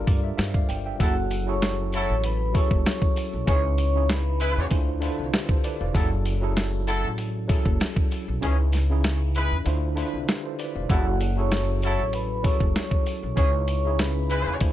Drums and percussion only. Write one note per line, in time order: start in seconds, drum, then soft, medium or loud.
0.07 kick loud
0.07 closed hi-hat medium
0.07 sleigh bells medium
0.38 snare loud
0.38 closed hi-hat loud
0.38 sleigh bells medium
0.54 kick loud
0.69 closed hi-hat medium
0.69 sleigh bells medium
1.00 kick loud
1.00 closed hi-hat medium
1.00 sleigh bells soft
1.30 closed hi-hat medium
1.30 sleigh bells medium
1.62 snare loud
1.62 closed hi-hat loud
1.62 sleigh bells soft
1.92 closed hi-hat medium
1.92 sleigh bells medium
2.23 closed hi-hat medium
2.23 sleigh bells soft
2.55 kick loud
2.55 closed hi-hat medium
2.55 sleigh bells medium
2.71 kick medium
2.86 snare loud
2.86 closed hi-hat loud
2.86 sleigh bells medium
3.02 kick loud
3.16 closed hi-hat medium
3.16 sleigh bells medium
3.47 kick loud
3.47 closed hi-hat medium
3.47 sleigh bells soft
3.78 closed hi-hat medium
3.78 sleigh bells medium
4.09 snare loud
4.09 closed hi-hat loud
4.09 sleigh bells soft
4.40 closed hi-hat medium
4.40 sleigh bells medium
4.71 kick loud
4.71 closed hi-hat medium
4.71 sleigh bells soft
5.02 closed hi-hat medium
5.02 sleigh bells medium
5.33 snare loud
5.33 closed hi-hat loud
5.33 sleigh bells medium
5.49 kick loud
5.64 closed hi-hat medium
5.64 sleigh bells medium
5.95 kick loud
5.95 closed hi-hat medium
5.95 sleigh bells soft
6.25 closed hi-hat medium
6.25 sleigh bells medium
6.57 snare loud
6.57 closed hi-hat loud
6.57 sleigh bells soft
6.87 closed hi-hat medium
6.87 sleigh bells medium
7.18 closed hi-hat loud
7.18 sleigh bells soft
7.49 kick loud
7.49 closed hi-hat medium
7.49 sleigh bells medium
7.65 kick medium
7.80 snare loud
7.80 closed hi-hat loud
7.80 sleigh bells medium
7.96 kick loud
8.11 closed hi-hat medium
8.11 sleigh bells medium
8.42 closed hi-hat medium
8.42 sleigh bells soft
8.72 snare soft
8.72 closed hi-hat medium
8.72 sleigh bells medium
9.04 snare loud
9.04 closed hi-hat loud
9.04 sleigh bells soft
9.35 closed hi-hat medium
9.35 sleigh bells medium
9.66 closed hi-hat medium
9.66 sleigh bells soft
9.97 closed hi-hat medium
9.97 sleigh bells medium
10.28 snare loud
10.28 closed hi-hat loud
10.28 sleigh bells medium
10.59 closed hi-hat medium
10.59 sleigh bells medium
10.90 kick loud
10.90 closed hi-hat medium
10.90 sleigh bells soft
11.20 closed hi-hat medium
11.20 sleigh bells medium
11.52 snare loud
11.52 closed hi-hat loud
11.52 sleigh bells soft
11.82 closed hi-hat medium
11.82 sleigh bells medium
12.13 closed hi-hat medium
12.13 sleigh bells soft
12.44 kick loud
12.44 closed hi-hat medium
12.44 sleigh bells medium
12.60 kick medium
12.76 snare loud
12.76 closed hi-hat loud
12.76 sleigh bells medium
12.91 kick loud
13.06 closed hi-hat medium
13.06 sleigh bells medium
13.37 kick loud
13.37 closed hi-hat medium
13.37 sleigh bells soft
13.68 closed hi-hat medium
13.68 sleigh bells medium
13.99 snare loud
13.99 closed hi-hat loud
13.99 sleigh bells medium
14.30 closed hi-hat medium
14.30 sleigh bells medium
14.60 kick medium
14.60 closed hi-hat medium
14.60 sleigh bells soft